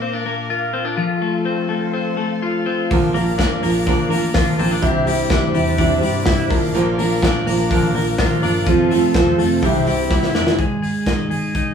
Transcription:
Already playing: clean electric guitar A#2 A#3, string machine A#4 F5 D6
0.02 clean electric guitar C4
0.13 clean electric guitar D4
0.26 clean electric guitar A#3
0.50 clean electric guitar F4
0.73 clean electric guitar C4
0.85 clean electric guitar D4
0.97 clean electric guitar F3, string machine A4 F5 C6
1.22 clean electric guitar A3
1.45 clean electric guitar C4
1.69 clean electric guitar A3
1.93 clean electric guitar C4
2.17 clean electric guitar A3
2.43 clean electric guitar F4
2.66 clean electric guitar C4
2.91 fingered electric bass A#1, steel-string acoustic guitar A#2 D3 F3 A#3 D4 A#4, string machine A#4 D6, kick, open hi-hat
3.14 steel-string acoustic guitar F3 A#3 D4 A#4, clean electric guitar A#3, hi-hat pedal, open hi-hat
3.38 steel-string acoustic guitar F3 A#3 D4 A#4, clean electric guitar D4, kick, snare, hi-hat pedal, open hi-hat
3.62 fingered electric bass A#1, steel-string acoustic guitar F3 A#3 D4 A#4, clean electric guitar A#3, hi-hat pedal, open hi-hat
3.87 steel-string acoustic guitar A#2 D3 F3 A#3 D4 A#4, clean electric guitar D4, kick, hi-hat pedal, open hi-hat
4.09 fingered electric bass A1, steel-string acoustic guitar F3 A#3 D4 A#4, clean electric guitar A#3, hi-hat pedal, open hi-hat
4.34 steel-string acoustic guitar F3 A#3 D4 A#4, clean electric guitar F4, kick, snare, hi-hat pedal, open hi-hat
4.58 fingered electric bass A#1, steel-string acoustic guitar F3 A#3 D4 A#4, clean electric guitar C4, hi-hat pedal, open hi-hat
4.71 clean electric guitar D4
4.81 fingered electric bass C2, steel-string acoustic guitar C3 G3 D4 E4 G4, clean electric guitar C3, string machine C5 E5, kick, hi-hat pedal, open hi-hat
5.05 clean electric guitar G3, steel-string acoustic guitar D4 E4 G4, hi-hat pedal, open hi-hat
5.29 fingered electric bass D2, steel-string acoustic guitar G3 D4 E4 G4, clean electric guitar D4, kick, snare, hi-hat pedal, open hi-hat
5.54 fingered electric bass E2, clean electric guitar G3, steel-string acoustic guitar D4 E4 G4, hi-hat pedal, open hi-hat
5.78 fingered electric bass E2, steel-string acoustic guitar C3 G3 D4 E4 G4, clean electric guitar D4, kick, hi-hat pedal, open hi-hat
6.01 fingered electric bass G2, clean electric guitar G3, steel-string acoustic guitar D4 E4 G4, hi-hat pedal, open hi-hat
6.25 steel-string acoustic guitar G3 D4 E4 G4, clean electric guitar E4, kick, snare, hi-hat pedal, open hi-hat
6.50 fingered electric bass A#1, clean electric guitar A#2, steel-string acoustic guitar F3 A#3 D4 A#4, string machine A#4 F5, kick, hi-hat pedal, open hi-hat
6.73 steel-string acoustic guitar A#2 D3 F3 A#3 D4 A#4, clean electric guitar A#2, hi-hat pedal, open hi-hat
6.98 steel-string acoustic guitar F3 A#3 D4 A#4, clean electric guitar A#3, hi-hat pedal, open hi-hat
7.22 steel-string acoustic guitar F3 A#3 D4 A#4, clean electric guitar D4, kick, snare, hi-hat pedal, open hi-hat
7.47 fingered electric bass A#1, steel-string acoustic guitar F3 A#3 D4 A#4, clean electric guitar A#3, hi-hat pedal, open hi-hat
7.70 steel-string acoustic guitar A#2 D3 F3 A#3 D4 A#4, clean electric guitar D4, kick, hi-hat pedal, open hi-hat
7.94 fingered electric bass A#1, steel-string acoustic guitar F3 A#3 D4 A#4, clean electric guitar A#3, hi-hat pedal, open hi-hat
8.18 steel-string acoustic guitar F3 A#3 D4 A#4, clean electric guitar F4, kick, snare, hi-hat pedal, open hi-hat
8.42 fingered electric bass G1, steel-string acoustic guitar F3 A#3 D4 A#4, clean electric guitar D4, hi-hat pedal, open hi-hat
8.66 fingered electric bass F1, steel-string acoustic guitar F3 C4 F4 A4, clean electric guitar F3, string machine A4 C6, kick, hi-hat pedal, open hi-hat
8.90 clean electric guitar A3, steel-string acoustic guitar C4 F4 A4, hi-hat pedal, open hi-hat
9.14 fingered electric bass E1, steel-string acoustic guitar F3 C4 F4 A4, clean electric guitar C4, kick, snare, hi-hat pedal, open hi-hat
9.38 fingered electric bass F1, clean electric guitar A3, steel-string acoustic guitar C4 F4 A4, hi-hat pedal, open hi-hat
9.62 fingered electric bass C2, steel-string acoustic guitar C3 G3 D4 E4 G4, clean electric guitar C3, string machine C5 E5 D6, kick, hi-hat pedal, open hi-hat
9.86 fingered electric bass C2, clean electric guitar G3, steel-string acoustic guitar D4 E4 G4, hi-hat pedal, open hi-hat
10.09 steel-string acoustic guitar G3 D4 E4 G4, clean electric guitar E4, kick, snare
10.23 snare
10.33 fingered electric bass F1, clean electric guitar D4, steel-string acoustic guitar D4 E4 G4, snare
10.47 snare
10.59 fingered electric bass G#1, clean electric guitar G#3, kick, closed hi-hat
10.82 clean electric guitar G#4, open hi-hat
11.06 clean electric guitar D#4, kick, snare, closed hi-hat
11.30 fingered electric bass G#1, clean electric guitar G#4, open hi-hat
11.55 clean electric guitar D#4, kick, closed hi-hat

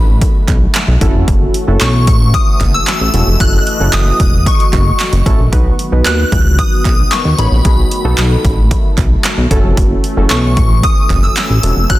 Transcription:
Already playing: analog synth bass A1, analog synth pad D#3 F#3 A3 F#4, synth keys B3 D#4 F#4 B4
0.21 kick, closed hi-hat
0.48 analog synth bass B1, kick, clap, closed hi-hat
0.75 snare, clap, closed hi-hat
0.88 analog synth bass B1
1.01 analog synth bass F#1, analog synth pad E3 A3 C#4, synth keys C#4 E4 F#4 A4, kick, closed hi-hat
1.15 analog synth bass F1
1.28 analog synth bass F#1, kick, closed hi-hat
1.54 closed hi-hat
1.68 analog synth bass F#1, synth keys C#4 E4 F#4 A4
1.81 analog synth bass B1, synth bell C#6, snare, clap, closed hi-hat
2.07 analog synth bass A1, kick, closed hi-hat
2.34 synth bell D#6, kick, closed hi-hat
2.61 analog synth bass F#1, kick, clap, closed hi-hat
2.74 synth bell E6
2.87 snare, clap, closed hi-hat
3.01 analog synth bass A1
3.14 analog synth bass E1, synth keys C#4 E4 F#4 A4, analog synth pad D#5, closed hi-hat
3.27 analog synth bass F1
3.40 analog synth bass F#1, synth keys C#4 E4 F#4 A4, synth bell F#6, kick, closed hi-hat
3.67 closed hi-hat
3.80 analog synth bass F#1, synth keys C#4 E4 F#4 A4
3.93 analog synth bass F#1, synth bell D#6, snare, clap, closed hi-hat
4.20 analog synth bass E1, kick, closed hi-hat
4.46 synth bell C#6, kick, closed hi-hat
4.60 closed hi-hat
4.73 analog synth bass F#1, kick, clap, closed hi-hat
5.00 snare, clap, closed hi-hat
5.13 analog synth bass F#1, closed hi-hat
5.26 analog synth bass A1, synth keys C#4 E4 F#4 A4, kick, closed hi-hat
5.39 analog synth bass A#1
5.52 analog synth bass B1, analog synth pad D#3 F#3 B3, synth keys B3 D#4 F#4 B4, kick, closed hi-hat
5.79 closed hi-hat
5.92 analog synth bass B1, synth keys B3 D#4 F#4 B4
6.05 analog synth bass D#2, synth bell F#6, snare, clap, closed hi-hat
6.32 analog synth bass C#2, kick, closed hi-hat
6.59 synth bell D#6, kick, closed hi-hat
6.85 analog synth bass B1, kick, clap, closed hi-hat
7.12 synth bell C#6, snare, clap, closed hi-hat
7.25 analog synth bass D#2
7.38 analog synth bass A1, synth keys B3 D#4 F#4 C#5, synth bell B5, closed hi-hat
7.52 analog synth bass A#1
7.65 analog synth bass B1, analog synth pad A3, synth keys B3 D#4 F#4 G#4, kick, closed hi-hat
7.91 closed hi-hat
8.05 analog synth bass B1, synth keys B3 D#4 F#4 A4
8.18 analog synth bass B1, snare, clap, closed hi-hat
8.45 analog synth bass A1, kick, closed hi-hat
8.71 kick, closed hi-hat
8.98 analog synth bass B1, kick, clap, closed hi-hat
9.24 snare, clap, closed hi-hat
9.38 analog synth bass B1
9.51 analog synth bass F#1, analog synth pad E3 C#4, synth keys C#4 E4 F#4 A4, kick, closed hi-hat
9.64 analog synth bass F1
9.77 analog synth bass F#1, kick, closed hi-hat
10.04 closed hi-hat
10.17 analog synth bass F#1, synth keys C#4 E4 F#4 A4
10.30 analog synth bass B1, synth bell C#6, snare, clap, closed hi-hat
10.57 analog synth bass A1, kick, closed hi-hat
10.83 synth bell D#6, kick, closed hi-hat
11.10 analog synth bass F#1, kick, clap, closed hi-hat
11.23 synth bell E6
11.37 snare, clap, closed hi-hat
11.50 analog synth bass A1
11.63 analog synth bass E1, analog synth pad B3, synth keys C#4 E4 F#4 A4, closed hi-hat
11.77 analog synth bass F1
11.90 analog synth bass F#1, synth keys C#4 E4 F#4 A4, synth bell F#6, kick, closed hi-hat

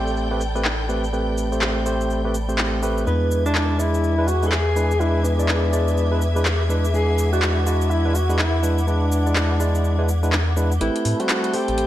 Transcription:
Already playing: analog synth bass A1, tine electric piano A3 C4 G4 C5, string section A4 D5 G5, analog synth pad G5 B5, violin section G6
0.07 cabasa
0.17 cabasa
0.31 tine electric piano A3 C4 G4 B4
0.41 cabasa
0.55 tine electric piano A3 C4 G4 B4, cabasa
0.65 clap, cabasa
0.89 tine electric piano A3 C4 G4 B4, cabasa
1.04 cabasa
1.13 tine electric piano A3 C4 G4 B4, cabasa
1.38 cabasa
1.52 tine electric piano A3 C4 G4 C5, cabasa
1.62 clap, cabasa
1.86 tine electric piano A3 C4 G4 C5, cabasa
2.01 cabasa
2.10 cabasa
2.25 tine electric piano A3 C4 G4 B4
2.34 cabasa
2.49 tine electric piano A3 C4 G4 C5, cabasa
2.58 clap, cabasa
2.82 tine electric piano A3 C4 G4 B4, cabasa
2.98 cabasa
3.07 analog synth bass E2, tine electric piano G#3 D4 E4 B4, tenor saxophone B3, analog synth pad G#4 E5 D6, string section B4, violin section G#6, cabasa
3.31 cabasa
3.39 string section G#5
3.46 tine electric piano G#3 D4 E4 D5, tenor saxophone D4, string section E5, cabasa
3.55 clap, cabasa
3.79 tine electric piano G#3 D4 E4 D5, tenor saxophone E4, cabasa
3.94 cabasa
4.04 cabasa
4.18 tine electric piano G#3 D4 E4 B4
4.28 tenor saxophone F#4, cabasa
4.42 tine electric piano G#3 D4 E4 B4, cabasa
4.46 tenor saxophone A4
4.52 tenor saxophone G#4, clap, cabasa
4.76 tine electric piano G#3 D4 E4 B4, cabasa
4.91 cabasa
5.00 tine electric piano G#3 D4 E4 B4, tenor saxophone E4, cabasa
5.25 tenor saxophone B3, cabasa
5.39 tine electric piano G#3 D4 E4 D5, cabasa
5.49 clap, cabasa
5.73 tine electric piano G#3 D4 E4 D5, cabasa
5.88 cabasa
5.97 cabasa
6.12 tine electric piano G#3 D4 E4 B4
6.22 cabasa
6.36 tine electric piano G#3 D4 E4 B4, cabasa
6.45 clap, cabasa
6.69 tine electric piano G#3 D4 E4 B4, cabasa
6.85 cabasa
6.94 tine electric piano G#3 D4 E4 B4, tenor saxophone G#4, analog synth pad F#5, cabasa
6.99 string section F#5
7.18 cabasa
7.33 tine electric piano G#3 D4 E4 D5, tenor saxophone F#4, cabasa
7.42 clap, cabasa
7.66 tine electric piano G#3 D4 E4 D5, tenor saxophone F#4, cabasa
7.81 cabasa
7.91 tenor saxophone E4, cabasa
8.05 tine electric piano G#3 D4 E4 B4
8.15 tenor saxophone F#4, cabasa
8.29 tine electric piano G#3 D4 E4 B4, cabasa
8.39 tenor saxophone E4, clap, cabasa
8.63 tine electric piano G#3 D4 E4 B4, cabasa
8.78 cabasa
8.87 tine electric piano G#3 D4 E4 B4, tenor saxophone D4, cabasa
9.12 cabasa
9.26 tine electric piano G#3 D4 E4 D5, cabasa
9.36 clap, cabasa
9.60 tine electric piano G#3 D4 E4 D5, cabasa
9.75 cabasa
9.84 cabasa
9.99 tine electric piano G#3 D4 E4 B4
10.09 cabasa
10.23 tine electric piano G#3 D4 E4 B4, cabasa
10.32 clap, cabasa
10.57 tine electric piano G#3 D4 E4 B4, cabasa
10.72 cabasa
10.81 analog synth bass A1, tine electric piano A3 C4 G4 B4, tenor saxophone E4, string section A4, analog synth pad A5 B5, violin section G6, closed hi-hat
10.96 closed hi-hat
11.05 analog synth bass A2, open hi-hat
11.20 tine electric piano G3 A3 C4 C5, tenor saxophone F#4, closed hi-hat
11.29 clap, closed hi-hat
11.41 string section D5 A5, closed hi-hat
11.53 tine electric piano A3 C4 G4 C5, tenor saxophone G4, open hi-hat
11.68 analog synth bass A1, closed hi-hat
11.78 closed hi-hat

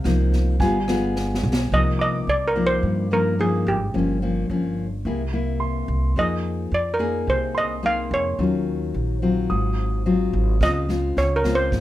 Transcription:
Already playing: nylon-string guitar C3, grand piano F5
0.04 upright bass C2, nylon-string guitar F3 A#3 D#4, cross-stick, snare
0.32 kick, snare
0.60 upright bass G1, nylon-string guitar G3 B3 F4 G#4, grand piano G#5, kick, snare
0.88 nylon-string guitar B3 F4 G#4, cross-stick, snare
1.16 snare
1.34 snare
1.43 upright bass B1
1.53 snare
1.72 upright bass C2, nylon-string guitar C3 F3 A#3 D#4, steel pan D#5
1.99 steel pan D#5, grand piano D6
2.27 upright bass C2, steel pan D5
2.48 steel pan A#4
2.56 nylon-string guitar F3 A#3 D#4
2.67 steel pan C5
2.83 upright bass G2, nylon-string guitar G2
3.11 nylon-string guitar F3 A#3 D#4, steel pan A#4
3.39 nylon-string guitar F3 A#3 D#4, steel pan G#4
3.67 upright bass G#1, steel pan G4
3.94 upright bass G1, nylon-string guitar G2 F3 A#3 C#4
4.22 nylon-string guitar F3 A#3 C#4
4.50 upright bass G1, nylon-string guitar F3 A#3 C#4
5.05 upright bass C2, nylon-string guitar C3 A#3 E4 G#4
5.33 nylon-string guitar A#3 E4
5.60 grand piano C6
5.88 upright bass C2
6.16 upright bass F2, nylon-string guitar F3 A#3 D#4 G#4, steel pan D#5
6.72 upright bass F2, steel pan D5
6.94 steel pan A#4
6.99 nylon-string guitar A#3 D#4 G#4
7.27 upright bass C2, nylon-string guitar C3, steel pan C5
7.55 steel pan D#5, grand piano C6
7.83 nylon-string guitar A#3 D#4 G#4, steel pan F5
8.11 upright bass F2, steel pan C#5
8.39 upright bass D#2, nylon-string guitar D#3 F#3 C#4 F4
8.94 upright bass A#1
9.22 nylon-string guitar F#3 C4 F4
9.50 upright bass G#1, nylon-string guitar G#2, grand piano D#6
10.06 nylon-string guitar F#3 C4 F4
10.33 upright bass G#1
10.61 upright bass C#2, nylon-string guitar C#3 G#3 C4 F4, steel pan D#5, kick, cross-stick, snare
10.89 nylon-string guitar G#3 C4 F4, snare
11.16 upright bass C#2, steel pan C#5, snare
11.36 steel pan A#4
11.44 nylon-string guitar G#3 C4 F4, kick, cross-stick, snare
11.55 steel pan C5
11.72 upright bass G#1, nylon-string guitar G#2, kick, snare

